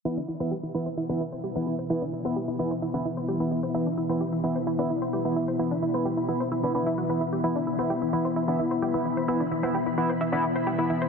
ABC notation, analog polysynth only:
X:1
M:4/4
L:1/16
Q:1/4=130
K:Clyd
V:1 name="Analog polysynth"
[E,B,E] z2 [E,B,E] z2 [E,B,E] z2 [E,B,E] z3 [E,B,E]2 z | [E,B,E] z2 [E,B,E] z2 [E,B,E] z2 [E,B,E] z3 [E,B,E]2 z | [E,B,E] z2 [E,B,E] z2 [E,B,E] z2 [E,B,E] z3 [E,B,E]2 z | [E,B,E] z2 [E,B,E] z2 [E,B,E] z2 [E,B,E] [E,B,E]2 z [E,B,E] z2 |
[E,B,E] z2 [E,B,E] z2 [E,B,E] z2 [E,B,E] z3 [E,B,E]2 z | [E,B,E] z2 [E,B,E] z2 [E,B,E] z2 [E,B,E] z3 [E,B,E]2 z |]